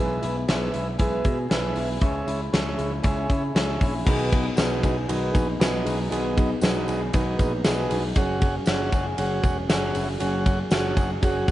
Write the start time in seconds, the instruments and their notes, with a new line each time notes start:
Already playing: picked electric bass B1, steel-string acoustic guitar B2 E3 G#3, clean electric guitar B3, transistor combo organ G#4 B4
0.00 steel-string acoustic guitar B3 E4 G#4, transistor combo organ E5
0.22 picked electric bass B1, steel-string acoustic guitar G#3 B3 E4 G#4, closed hi-hat
0.47 picked electric bass B1, steel-string acoustic guitar G#3 B3 E4 G#4, transistor combo organ G#4 B4 E5, snare, closed hi-hat
0.73 picked electric bass B1, steel-string acoustic guitar G#3 B3 E4 G#4, closed hi-hat
0.98 picked electric bass B1, steel-string acoustic guitar B2 E3 G#3 B3 E4 G#4, transistor combo organ G#4 B4 E5, kick, closed hi-hat
1.24 picked electric bass B2, steel-string acoustic guitar G#3 B3 E4 G#4, kick, closed hi-hat
1.50 picked electric bass B1, steel-string acoustic guitar G#3 B3 E4 G#4, transistor combo organ G#4 B4 E5, snare, closed hi-hat
1.75 picked electric bass B1, steel-string acoustic guitar G#3 B3 E4 G#4, open hi-hat
2.01 picked electric bass C#2, steel-string acoustic guitar C#3 G#3 C#4 E4 G#4, transistor combo organ G#4 C#5 E5, kick, closed hi-hat
2.26 picked electric bass C#2, steel-string acoustic guitar C#4 E4 G#4, closed hi-hat
2.52 picked electric bass C#2, steel-string acoustic guitar G#3 C#4 E4 G#4, transistor combo organ G#4 C#5 E5, snare, closed hi-hat
2.78 picked electric bass C#2, steel-string acoustic guitar C#4 E4 G#4, closed hi-hat
3.02 picked electric bass C#2, steel-string acoustic guitar C#3 G#3 C#4 E4 G#4, transistor combo organ G#4 C#5 E5, kick, closed hi-hat
3.28 picked electric bass C#3, steel-string acoustic guitar C#4 E4 G#4, kick, closed hi-hat
3.54 picked electric bass C#2, steel-string acoustic guitar G#3 C#4 E4 G#4, transistor combo organ G#4 C#5 E5, snare, closed hi-hat
3.81 picked electric bass A#1, steel-string acoustic guitar C#4 E4 G#4, kick, open hi-hat
4.05 picked electric bass B1, steel-string acoustic guitar B2 D#3 F#3 B3 D#4 G#4, transistor combo organ F#4 G#4 B4 D#5, kick, crash, tambourine
4.32 steel-string acoustic guitar F#3 B3 D#4 G#4, kick, ride
4.56 picked electric bass B1, steel-string acoustic guitar F#3 B3 D#4, transistor combo organ F#4 G#4 B4 D#5, snare, ride, tambourine
4.61 steel-string acoustic guitar G#4
4.83 picked electric bass B1, steel-string acoustic guitar F#3 B3 D#4 G#4, kick, ride, tambourine
5.08 picked electric bass B1, steel-string acoustic guitar B2 D#3 F#3 B3 D#4 G#4, transistor combo organ F#4 G#4 B4 D#5, ride, tambourine
5.33 picked electric bass A#1, steel-string acoustic guitar F#3 B3 D#4 G#4, kick, ride, tambourine
5.59 picked electric bass B1, steel-string acoustic guitar F#3 B3 D#4 G#4, transistor combo organ F#4 G#4 B4 D#5, snare, ride, tambourine
5.85 picked electric bass B1, steel-string acoustic guitar F#3 B3 D#4 G#4, open hi-hat, ride, tambourine
6.10 picked electric bass B1, steel-string acoustic guitar B2 D#3 F#3 B3 D#4 G#4, transistor combo organ F#4 G#4 B4 D#5, hi-hat pedal, ride
6.36 steel-string acoustic guitar F#3 B3 D#4 G#4, kick, ride, tambourine
6.60 picked electric bass B1, steel-string acoustic guitar F#3 B3 D#4 G#4, transistor combo organ F#4 G#4 B4 D#5, snare, ride, tambourine
6.87 picked electric bass B1, steel-string acoustic guitar F#3 B3 D#4 G#4, ride, tambourine
7.13 picked electric bass B1, steel-string acoustic guitar B2 D#3 F#3 B3 D#4 G#4, transistor combo organ F#4 G#4 B4 D#5, kick, ride, tambourine
7.38 picked electric bass A#1, steel-string acoustic guitar F#3 B3 D#4 G#4, kick, ride, tambourine
7.64 picked electric bass B1, steel-string acoustic guitar F#3 B3 D#4 G#4, transistor combo organ F#4 G#4 B4 D#5, snare, ride, tambourine
7.89 picked electric bass B1, steel-string acoustic guitar F#3 B3 D#4 G#4, open hi-hat, ride, tambourine
8.15 picked electric bass F#1, steel-string acoustic guitar F#3 C#4 F#4 G#4, transistor combo organ F#4 G#4 C#5 F#5, kick, hi-hat pedal, ride, tambourine
8.41 steel-string acoustic guitar C#4 F#4 G#4, kick, ride, tambourine
8.66 picked electric bass F#1, steel-string acoustic guitar F#3 C#4 F#4 G#4, transistor combo organ F#4 G#4 C#5 F#5, snare, ride, tambourine
8.92 picked electric bass F#1, steel-string acoustic guitar C#4 F#4 G#4, kick, ride, tambourine
9.17 picked electric bass F#1, steel-string acoustic guitar F#3 C#4 F#4 G#4, transistor combo organ F#4 G#4 C#5 F#5, ride, tambourine
9.42 picked electric bass E1, steel-string acoustic guitar C#4 F#4 G#4, kick, ride, tambourine
9.69 picked electric bass F#1, steel-string acoustic guitar F#3 C#4 F#4 G#4, transistor combo organ F#4 G#4 C#5 F#5, snare, ride, tambourine
9.94 picked electric bass F#1, steel-string acoustic guitar C#4 F#4 G#4, clean electric guitar E4, open hi-hat, ride, tambourine
10.07 clean electric guitar F#4
10.19 picked electric bass F#1, steel-string acoustic guitar F#3 C#4 F#4 G#4, transistor combo organ F#4 G#4 C#5 F#5, hi-hat pedal, ride, tambourine
10.46 steel-string acoustic guitar C#4 F#4 G#4, kick, ride, tambourine
10.71 picked electric bass F#1, steel-string acoustic guitar F#3 C#4 F#4 G#4, transistor combo organ F#4 G#4 C#5 F#5, snare, ride, tambourine
10.97 picked electric bass F#1, steel-string acoustic guitar C#4 G#4, kick, ride, tambourine
11.21 picked electric bass F#1, steel-string acoustic guitar F#3 C#4 F#4 G#4, transistor combo organ F#4 G#4 C#5 F#5, kick, ride, tambourine
11.47 picked electric bass E1, clean electric guitar C#4, steel-string acoustic guitar G#4, kick, ride